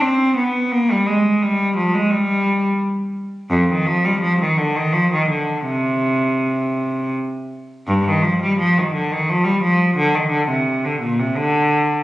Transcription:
0.01 C4
0.36 B3
0.72 A#3
0.91 G3
1.07 G#3
1.43 G3
1.77 F3
1.94 G#3
2.11 G3
3.51 F2
3.70 D#3
3.87 F3
4.05 G3
4.22 F3
4.41 D#3
4.58 D3
4.76 D#3
4.93 F3
5.13 D#3
5.29 D3
5.66 C3
7.87 G2
8.07 D#3
8.22 F3
8.43 G3
8.59 F3
8.78 D#3
8.94 D3
9.12 D#3
9.29 F3
9.44 G3
9.63 F3
9.97 D3
10.15 D#3
10.31 D3
10.49 C3
10.85 D3
11.02 A#2
11.20 C3
11.37 D3

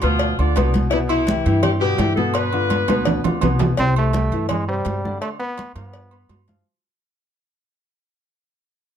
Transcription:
0.02 D2 B2 F3 B3 F4 B4, cowbell, high conga, low agogo
0.19 cowbell, high conga
0.38 D2 D3 D4 F4 D5, high conga, low agogo
0.56 C2 B2 B3 B4, cowbell, high conga, low timbale, low agogo
0.74 cowbell, high conga
0.90 B2 E3 B3 E4 B4, cowbell, high conga, low agogo
1.09 E3 E4, high conga, low agogo
1.27 E3 E4 G4, cowbell, high conga, low timbale
1.46 G2 E3 E4 G4, low agogo
1.63 G3 G4, cowbell, high conga, low conga, low agogo
1.80 B2 G3 B3 G4 B4, high conga
1.98 G2 E3 E4 G4, cowbell, high conga, low timbale, low agogo
2.16 B2 A3 B3 A4 B4, high conga
2.34 B3 B4, cowbell, high conga, low agogo
2.52 D3 D4 F4, high conga, low agogo
2.70 cowbell, high conga, low timbale, low agogo
2.88 D2 B2 B3 B4, cowbell, high conga, high timbale, low agogo
3.05 cowbell, low conga, high timbale
3.24 D2 D3 D4 F4, low conga, low timbale, low agogo
3.41 C2 B2 B3 B4, cowbell, low conga, low timbale, low agogo
3.59 cowbell, low conga, low timbale
3.77 C2 C3 C4 C5, cowbell, high conga, low agogo
3.96 A3, high conga, low agogo
4.13 G3 G4 G5, cowbell, high conga, low timbale
4.32 G2 E3 E4 E5, low agogo
4.49 G#3, cowbell, high conga, low conga, low agogo
4.68 C3 G3 C4 C5, high conga
4.85 G2, cowbell, high conga, low timbale, low agogo
5.04 D3 D4 D5, high conga
5.21 A3, cowbell, high conga, low agogo
5.39 B3 B4 B5, high conga, low agogo
5.57 cowbell, high conga, low timbale, low agogo
5.75 G2 F3 B3 F4 F5, cowbell, high conga, low agogo
5.93 cowbell, high conga
6.11 B3 B4 B5, high conga, low agogo
6.29 G2, cowbell, high conga, low timbale, low agogo
6.48 F3 F4 F5, cowbell, high conga

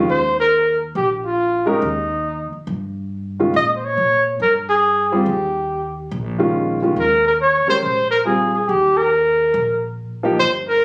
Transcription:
0.09 D#2 C5
0.40 A#4
0.95 A#1 G4
1.26 F4
1.66 G#3 C#4 D#4 G4 A#4
1.82 D#2
2.53 muted upright bass stroke
2.67 G2
3.40 D#3 G#3 C#4 F4
3.54 A#2 D#5
3.75 C5
3.85 C#5
3.98 A#2
4.40 G2 A#4
4.69 G#4
5.12 G3 C4 F4 G4 G#4
5.26 D#2
6.11 A#1
6.39 D#3 G#3 C#4 F4
6.82 D#3 G#3 C#4 F4
6.96 D#2 A#4
7.27 A#4
7.41 C#5
7.67 G#3 C#4 G4 A#4 C5, muted upright bass stroke
7.83 A#1 C5
8.11 A#4
8.25 G3 C4 F4 G#4
8.54 G#4
8.69 D#2 G4
8.97 A#4
9.54 A#1
10.23 F3 A#3 D#4 G4
10.40 G1 C5
10.68 A#4

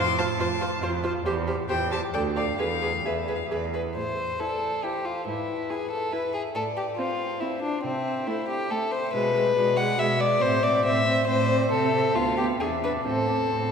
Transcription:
Already playing: F2
0.00 C6
0.18 F4 C5 A5
0.39 F2 F4 C5
0.61 F4 C5
0.82 F2 F4 C5
1.03 F4 C5
1.26 E2 G4 C5
1.47 G4 C5
1.69 E2 G4 C5 G5
1.91 G4 C5 A5
2.14 D2 A4 D5 G5
2.36 A4 D5 F5
2.58 E2 G#4 B4 F5
2.81 G#4 B4
3.05 E2 G#4 B4 E5
3.28 G#4 B4
3.36 F5
3.46 E5
3.50 E2 G#4 B4
3.56 D5
3.65 E5
3.73 G#4 B4
3.96 A2 C5
4.40 E4 A4 D5
4.83 E4 G4 C5
5.05 F4
5.26 G#2 E4 B4
5.69 E4 G#4
5.91 A4
6.12 E4 B4 E5
6.34 G#4
6.55 A2 A4 D5
6.77 G4
6.97 C4 F4 C5
7.40 C4 E4
7.62 D4
7.84 C3 C4 E5
8.27 A3 E4 C5
8.49 G4
8.70 A3 A4 E5
8.92 C5
9.13 B2 G#3 B4
9.35 G#3
9.56 B2 G#3 D5
9.77 G#3 F#5
9.98 B2 G#3 E5
10.20 G#3 D5
10.41 A2 C4 C5 E5
10.63 C4 D5
10.85 A2 C4 C5 E5
11.06 C4
11.27 A2 C4 C5 D5
11.50 C4
11.71 C3 C4 A4 E5
11.94 C4
12.15 D2 B3 F4 F5
12.37 B3 G4
12.60 E2 D4 G#4 E5
12.83 D4 B4
13.06 A2 C4 A4 C5
13.30 C4
13.53 A2 C4

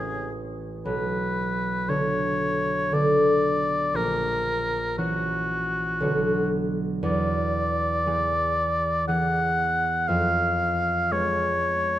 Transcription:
Already playing: A1 E3 C#4 E4 G#4
0.85 B1 B4
1.88 D3 B3 A4 C#5
2.92 D3 B3 A4 D5
3.94 A#1 A#4
4.98 E3 C#4 F#4
6.00 B1 D3 B3 F#4
7.03 E2 D5
8.06 E3 B3 G#4
9.08 E3 B3 G#4 F#5
10.08 F2 F5
11.11 G#3 B3 G#4 C#5

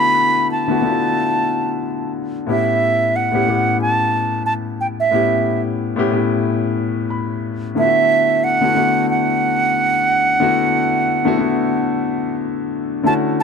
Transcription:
Already playing: D3 A3 B3 E4 F#4 B5
0.52 A5
0.67 D3 A3 B3 E4 F#4
0.82 D3 A3 B3 E4 F4
0.91 F#4
2.47 A2 B3 C#4 E4 G4 E5
3.16 F#5
3.32 A2 B3 C#4 E4 G4
3.46 A2 B3 C#4 E4 G4
3.81 A5
4.46 A5
4.81 G5
5.00 E5
5.11 A2 B3 C#4 E4 G4
5.96 A2 B3 C#4 E4 G4
6.11 A2 B3 C#4 E4 G4
7.10 B5
7.75 D3 A3 B3 E4 F4 E5
7.85 F#4
8.44 F#5
8.61 D3 A3 B3 E4 F#4
8.74 D3 A3 B3 E4 F#4
9.10 F#5
10.40 D3 A3 B3 E4 F#4
11.25 D3 A3 B3 E4 F#4
11.38 D3 A3 B3 E4 F#4
13.03 D3 A3 C#4 E4 F#4 A5
13.40 A5

